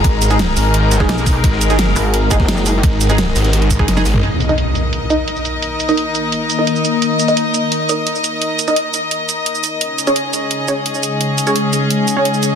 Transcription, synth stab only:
X:1
M:4/4
L:1/16
Q:1/4=172
K:Abm
V:1 name="Synth stab"
z3 [A,EA] z6 z [A,EA]4- [A,EA]- | [A,EA]3 [A,EA] z6 [A,EA] z4 z | z3 [A,EA] z6 z [A,EA] z [A,EA] z2 | z3 [EBe] z6 [EBe] z4 z |
z3 [EBe] z6 z [EBe]4- [EBe]- | [EBe]3 [EBe] z6 [EBe] z4 z | z3 [EBe] z12 | z3 [DAd] z6 [DAd] z4 z |
z3 [DAd] z6 z [DAd]4- [DAd] |]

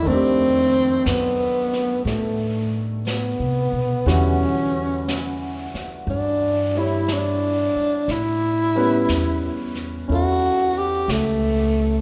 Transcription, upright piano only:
X:1
M:4/4
L:1/8
Q:"Swing" 1/4=60
K:Edor
V:1 name="Upright piano"
[_E,A,DG]8 | [D,E,G,F]4- [D,E,G,F] [G,Ec]3 | z [G,B,CB]3 [CEA]4 |]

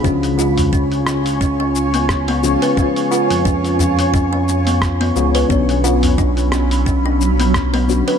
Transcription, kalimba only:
X:1
M:4/4
L:1/16
Q:"Swing 16ths" 1/4=88
K:none
V:1 name="Kalimba"
^C z ^E z C z C z C C z B,2 B, z B | ^C z ^E z C z C z C C z B,2 B, z B | ^C z ^E z D z C z C D z B,2 B, z B |]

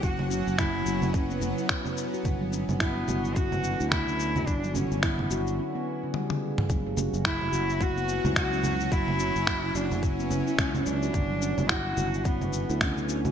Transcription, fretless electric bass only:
X:1
M:4/4
L:1/16
Q:"Swing 16ths" 1/4=108
K:none
V:1 name="Fretless electric bass" clef=bass
^F,,,3 F,,,3 F,,,4- F,,, z4 z | G,,,3 G,,,3 G,,,4- G,,, D,,4- D,, | G,,,3 G,,,3 G,,,2 z8 | ^F,,,3 F,,,3 F,,,4- F,,, ^C,,4- C,, |
^F,,,3 F,,,3 F,,,4- F,,, z ^C,,2 C,,2 | G,,,3 G,,,3 G,,,4- G,,, D,,4- D,, |]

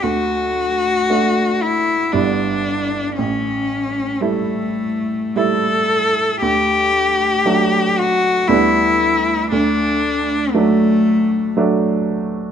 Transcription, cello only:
X:1
M:3/4
L:1/8
Q:1/4=58
K:D
V:1 name="Cello"
F3 E D2 | C2 A,2 A2 | G3 F E2 | D2 A,2 z2 |]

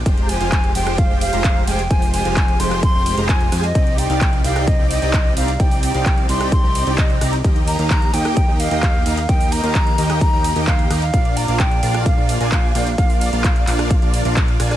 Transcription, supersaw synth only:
X:1
M:4/4
L:1/16
Q:1/4=130
K:Eb
V:1 name="Supersaw synth"
[A,FGcg]3 [A,FGcf]3 [A,FGcg]3 [A,FGcg]2 [A,FGcb]3 [A,FGca] z | [A,FGcg]3 [A,FGcf]3 [A,FGcg]3 [A,FGcg]2 [A,FGcb]3 [A,FGca] z | [CEGdg]3 [CEGdf]3 [CEGdg]3 [CEGdg]2 [CEGdg]3 [CEGdb] z | [CEGdg]3 [CEGdf]3 [CEGdg]3 [CEGdg]2 [CEGdg]3 [CEGdb] z |
[B,EGeg]3 [B,EGef]3 [B,EGeg]3 [B,EGeg]2 [B,EGeg]3 [B,EGeb] z | [B,EGeg]3 [B,EGef]3 [B,EGeg]3 [B,EGeg]2 [B,EGeg]3 [B,EGeb] z | [B,DFdf]3 [B,DFdf]3 [B,DFdf]3 [B,DFdf]2 [B,DFda]3 [B,DFdg] z | [B,DFdf]3 [B,DFdf]3 [B,DFdf]3 [B,DFdf]2 [B,DFdf]3 [B,DFda]2 |]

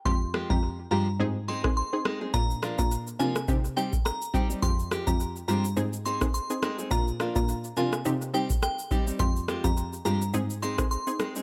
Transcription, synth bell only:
X:1
M:4/4
L:1/16
Q:"Swing 16ths" 1/4=105
K:Fdor
V:1 name="Synth bell"
c' z2 b2 z b2 z2 c' z c'3 z | b z2 b2 z a2 z2 g z b3 z | c' z2 b2 z b2 z2 c' z c'3 z | b z2 b2 z a2 z2 g z g3 z |
c' z2 b2 z b2 z2 c' z c'3 z |]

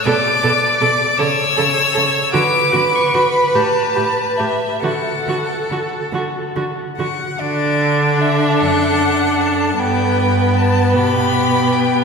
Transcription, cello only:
X:1
M:6/8
L:1/8
Q:3/8=51
K:D
V:1 name="Cello" clef=bass
B,, B,, B,, C, C, C, | D, D, D, A,, A,, A,, | D, D, D, D, D, D, | D,3 F,,3 |
G,,3 B,,3 |]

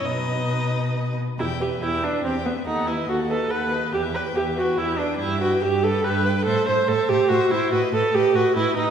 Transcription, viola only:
X:1
M:3/4
L:1/8
Q:1/4=142
K:B
V:1 name="Viola"
D4- D z | [K:Em] E G E D C B, | ^D E F A B2 | G B G F E D |
E F G A B2 | A c A G F E | F A G F E ^D |]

